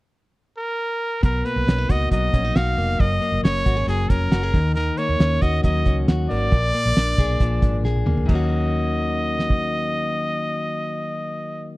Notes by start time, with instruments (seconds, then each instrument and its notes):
0.58 trumpet A#4
1.23 fingered electric bass B1, clean electric guitar B2, trumpet A#4, kick, closed hi-hat
1.45 clean electric guitar A#3, trumpet B4, closed hi-hat
1.56 fingered electric bass B1
1.67 fingered electric bass B1, clean electric guitar C#4, snare, closed hi-hat
1.78 clean electric guitar D#4
1.89 fingered electric bass C#2, clean electric guitar F#4, trumpet D#5, kick, closed hi-hat
2.11 fingered electric bass B1, clean electric guitar F#3, trumpet D#5, kick, closed hi-hat
2.33 fingered electric bass A#1, clean electric guitar C#4, kick, closed hi-hat
2.45 clean electric guitar D#4
2.55 fingered electric bass B1, clean electric guitar F#4, trumpet F5, snare, closed hi-hat
2.77 fingered electric bass F1, clean electric guitar A#3, open hi-hat
3.00 fingered electric bass F#1, clean electric guitar F#2, trumpet D#5, kick, closed hi-hat
3.22 clean electric guitar A#3, closed hi-hat
3.32 fingered electric bass F#1
3.43 fingered electric bass F#1, clean electric guitar C#4, trumpet C#5, snare, closed hi-hat
3.66 fingered electric bass G#1, clean electric guitar F#4, kick, closed hi-hat
3.77 clean electric guitar G#4
3.87 fingered electric bass F#1, clean electric guitar F#3, trumpet G#4, closed hi-hat
4.10 fingered electric bass F1, clean electric guitar C#4, trumpet A#4, kick, closed hi-hat
4.31 fingered electric bass F#1, clean electric guitar F#4, snare, closed hi-hat
4.43 clean electric guitar G#4
4.54 fingered electric bass D#2, clean electric guitar D#3, kick, open hi-hat
4.75 clean electric guitar D#3, trumpet A#4, closed hi-hat
4.97 clean electric guitar A#3, trumpet C#5, closed hi-hat
5.09 fingered electric bass D#2
5.20 fingered electric bass D#2, clean electric guitar C#4, snare, closed hi-hat
5.42 fingered electric bass D#2, clean electric guitar F#4, trumpet D#5, kick, closed hi-hat
5.63 fingered electric bass D#2, clean electric guitar F#3, trumpet D#5, kick, closed hi-hat
5.86 fingered electric bass C#2, clean electric guitar C#4, kick, closed hi-hat
6.08 fingered electric bass D#2, clean electric guitar F#4, snare, closed hi-hat
6.30 fingered electric bass G#1, clean electric guitar A#3, trumpet D5, open hi-hat
6.52 fingered electric bass A#1, clean electric guitar A#2, kick, closed hi-hat
6.74 clean electric guitar A#3, closed hi-hat
6.86 fingered electric bass A#1
6.96 fingered electric bass A#1, clean electric guitar D4, snare, closed hi-hat
7.18 fingered electric bass B1, clean electric guitar G#4, kick, closed hi-hat
7.40 fingered electric bass A#1, clean electric guitar F3, kick, closed hi-hat
7.62 fingered electric bass G#1, clean electric guitar D4, kick, closed hi-hat
7.84 fingered electric bass A#1, clean electric guitar G#4, snare
7.96 high tom
8.06 fingered electric bass D2, clean electric guitar A#3, mid tom
8.18 floor tom
8.26 fingered electric bass D#2, clean electric guitar D#3 F#3, trumpet D#5, kick, crash
8.31 clean electric guitar A#3 C#4
8.35 clean electric guitar F#4
9.39 snare
9.50 kick